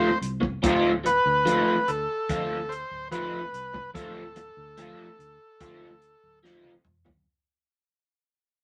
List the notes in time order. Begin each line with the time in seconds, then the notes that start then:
Already playing: D1 C5
0.21 C2, closed hi-hat
0.41 muted overdriven electric guitar stroke, kick
0.63 D1 F3 A3 C4 F4, kick, closed hi-hat
1.04 B4, muted overdriven electric guitar stroke, closed hi-hat
1.26 D2
1.45 F3 A3 C4 F4, closed hi-hat
1.88 D2 A4, closed hi-hat
2.29 D2 F3 A3 C4 F4, kick, closed hi-hat
2.69 C5, closed hi-hat
2.91 D1
3.12 F3 A3 C4 F4 B4, closed hi-hat
3.52 C2, closed hi-hat
3.74 muted overdriven electric guitar stroke, kick
3.95 D1 F3 A3 C4 F4 A4, kick, closed hi-hat
4.36 muted overdriven electric guitar stroke, closed hi-hat
4.57 D2
4.77 F3 A3 C4 F4, closed hi-hat
5.19 D2, closed hi-hat
5.60 D2 F3 A3 C4 F4, kick, closed hi-hat
6.02 closed hi-hat
6.23 D1
6.43 F3 A3 C4 F4, snare
6.64 high tom
6.85 E1, mid tom
7.06 D1, muted overdriven electric guitar stroke, floor tom